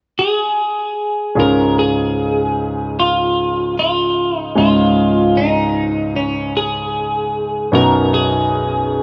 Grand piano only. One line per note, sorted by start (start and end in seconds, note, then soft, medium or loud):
1.35 4.52 C#2 soft
1.35 4.52 G#2 soft
1.35 4.52 G#3 soft
1.35 4.52 C#4 soft
1.35 4.52 F4 soft
1.35 4.53 G#4 soft
4.55 7.69 C#2 soft
4.55 7.69 G#2 soft
4.55 7.68 G#3 soft
4.55 7.69 C#4 soft
4.55 7.69 F4 soft
4.55 7.69 G#4 soft
7.72 9.03 B1 soft
7.72 9.03 F#2 soft
7.72 9.03 B3 soft
7.72 9.03 C#4 soft
7.72 9.03 D#4 soft
7.72 9.03 F#4 soft